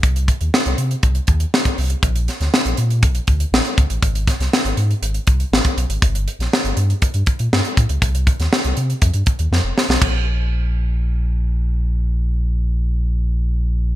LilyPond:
<<
  \new Staff \with { instrumentName = "Sub bass" } { \clef bass \time 4/4 \key c \dorian \tempo 4 = 120 c,8. ees,16 r16 c,16 c8 c,8 ees,8 r8 c,8 | bes,,8. d,16 r16 bes,,16 bes,8 bes,,8 d,8 a,,16 r16 cis,16 a,,16 | aes,,8. c,16 r16 aes,,16 aes,8 aes,,8 c,8 aes,,16 r16 ces,16 aes,,16 | g,,8. bes,,16 r16 g,,16 g,8 g,16 g,16 r16 bes,16 g,16 r16 a,16 des,16 |
c,8. ees,16 r16 c,16 c8 f,16 g,16 r16 ees,16 f,16 f,,16 r16 ces,16 | bes,,1~ | bes,,1 | }
  \new DrumStaff \with { instrumentName = "Drums" } \drummode { \time 4/4 <hh bd>16 hh16 <hh bd>16 hh16 sn16 hh16 hh16 hh16 <hh bd>16 hh16 <hh bd>16 hh16 sn16 <hh bd>16 hho16 hh16 | <hh bd>16 hh16 <hh sn>16 <hh sn>16 sn16 hh16 hh16 hh16 <hh bd>16 hh16 <hh bd>16 hh16 sn16 hh16 <hh bd>16 hh16 | <hh bd>16 hh16 <hh bd sn>16 <hh sn>16 sn16 hh16 hh16 hh16 hh16 hh16 <hh bd>16 hh16 sn16 <hh bd>16 hh16 hh16 | <hh bd>16 hh16 hh16 <hh sn>16 sn16 hh16 hh16 hh16 <hh bd>16 hh16 <hh bd>16 hh16 sn16 hh16 <hh bd>16 hh16 |
<hh bd>16 hh16 <hh bd>16 <hh sn>16 sn16 hh16 hh16 hh16 <hh bd>16 hh16 <hh bd>16 hh16 sn8 sn16 sn16 | <cymc bd>4 r4 r4 r4 | r4 r4 r4 r4 | }
>>